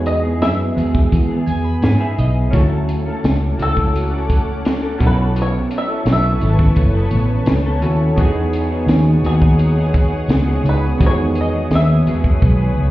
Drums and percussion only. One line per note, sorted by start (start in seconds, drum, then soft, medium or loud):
0.06 closed hi-hat medium
0.42 snare medium
0.42 closed hi-hat medium
0.78 closed hi-hat medium
0.95 kick medium
1.12 kick medium
1.12 closed hi-hat medium
1.47 closed hi-hat medium
1.82 snare loud
1.82 closed hi-hat medium
2.18 closed hi-hat medium
2.53 kick loud
2.53 closed hi-hat medium
2.89 closed hi-hat medium
3.24 snare medium
3.24 closed hi-hat medium
3.59 closed hi-hat medium
3.77 kick medium
3.96 closed hi-hat medium
4.30 kick medium
4.30 closed hi-hat medium
4.65 snare loud
4.65 closed hi-hat medium
5.00 kick loud
5.00 closed hi-hat medium
5.36 closed hi-hat medium
5.71 closed hi-hat medium
6.06 snare medium
6.06 closed hi-hat medium
6.41 closed hi-hat medium
6.59 kick medium
6.76 kick medium
6.76 closed hi-hat medium
7.11 closed hi-hat medium
7.46 snare loud
7.46 closed hi-hat medium
7.82 closed hi-hat medium
8.17 kick loud
8.17 closed hi-hat medium
8.53 closed hi-hat medium
8.88 snare medium
8.88 closed hi-hat medium
9.24 closed hi-hat medium
9.42 kick medium
9.59 closed hi-hat medium
9.94 kick medium
9.94 closed hi-hat medium
10.29 snare loud
10.29 closed hi-hat medium
10.66 closed hi-hat medium
11.01 kick loud
11.01 closed hi-hat medium
11.35 closed hi-hat medium
11.71 snare medium
11.71 closed hi-hat medium
12.07 closed hi-hat medium
12.24 kick medium
12.42 kick loud